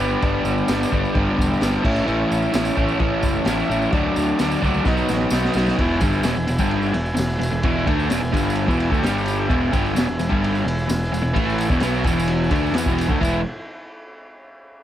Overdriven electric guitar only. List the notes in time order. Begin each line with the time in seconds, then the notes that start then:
Already playing: G2
0.00 D3 G3 B3 D4
0.21 G2 D3 G3 B3 D4
0.68 G2 D3 G3 B3 D4
0.91 G2 D3 G3 B3 D4
1.14 G2 D3 G3 B3 D4
1.61 G2 D3 G3 B3 D4
1.83 A2 E3 A3 C#4 E4
2.05 A2 E3 A3 C#4 E4
2.52 A2 E3 A3 C#4 E4
2.76 A2 E3 A3 C#4 E4
2.99 A2 E3 A3 C#4 E4
3.46 A2 E3 A3 C#4 E4
3.69 A2 E3 A3 C#4 E4
3.93 D3 F#3 A3 D4
4.39 D3 F#3 A3 D4
4.62 D3 F#3 A3 D4
4.85 B2 F#3 B3 D#4
5.31 B2 F#3 B3 D#4
5.57 B2 F#3 B3 D#4
5.79 E2 B2 E3
6.01 G2 D3 G3
6.24 E2 B2
6.37 E2 B2
6.47 E2 B2
6.59 G2 D3 G3
6.92 E2 B2
7.15 E2 B2
7.39 E2 B2
7.52 E2 B2
7.64 E2 B2 E3
7.86 D3 A3 D4
8.09 E2 B2
8.22 E2 B2
8.33 G2 D3 G3
8.67 E2 B2 E3
8.91 D3 A3
9.02 G2 D3 G3
9.49 E2 B2 E3
9.72 G2 D3 G3
9.94 E2 B2
10.07 E2 B2
10.19 E2 B2
10.29 G2 D3 G3
10.64 E2 B2
10.88 E2 B2
11.12 E2 B2
11.22 E2 B2
11.34 A2 E3 A3
11.69 E2 B2
11.81 B2 F#3 B3
12.04 E2 B2 E3
12.51 D3 A3 D4
12.74 E3 B3
12.86 E2 B2 E3
13.08 D3 A3
13.20 E3 G#3 B3 E4